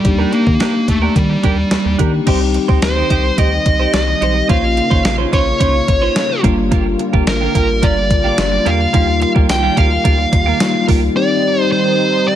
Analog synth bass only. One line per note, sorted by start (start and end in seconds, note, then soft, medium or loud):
0.05 0.26 D#2 loud
0.47 0.57 D#3 medium
0.88 1.09 D#2 medium
1.16 1.37 D#3 loud
1.44 1.65 D#2 medium
1.71 1.77 D#2 soft
1.85 1.96 D#2 medium
1.99 2.20 D#3 loud
2.27 2.58 C2 loud
2.69 2.79 D2 medium
2.83 3.04 D2 medium
3.10 3.31 C2 loud
3.38 3.59 D2 loud
3.66 3.87 C2 medium
3.94 4.15 C2 medium
4.22 4.42 B1 medium
4.50 4.81 A#1 loud
4.91 5.02 A1 medium
5.05 5.26 A#1 medium
5.33 5.54 A#1 loud
5.60 5.81 C2 medium
5.88 6.09 A1 medium
6.44 6.96 G1 loud
7.14 7.24 G1 loud
7.27 7.48 A1 medium
7.55 7.84 A1 loud
7.83 8.12 G1 loud
8.11 8.31 A1 medium
8.38 8.59 G1 medium
8.66 8.87 E2 medium
8.94 9.25 D#2 loud
9.36 9.46 D2 loud
9.49 9.70 C2 medium
9.77 9.98 D2 medium
10.05 10.26 D2 loud
10.33 10.54 D#2 medium
10.89 11.09 C#2 loud